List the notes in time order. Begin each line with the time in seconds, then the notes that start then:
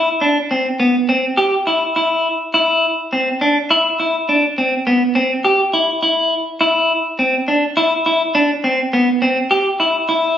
0.21 D4
0.51 C4
0.80 B3
1.09 C4
1.37 G4
1.67 E4
1.96 E4
2.54 E4
3.13 C4
3.41 D4
3.71 E4
4.00 E4
4.29 D4
4.58 C4
4.87 B3
5.15 C4
5.45 G4
5.73 E4
6.03 E4
6.61 E4
7.19 C4
7.48 D4
7.77 E4
8.06 E4
8.35 D4
8.64 C4
8.93 B3
9.22 C4
9.51 G4
9.80 E4
10.09 E4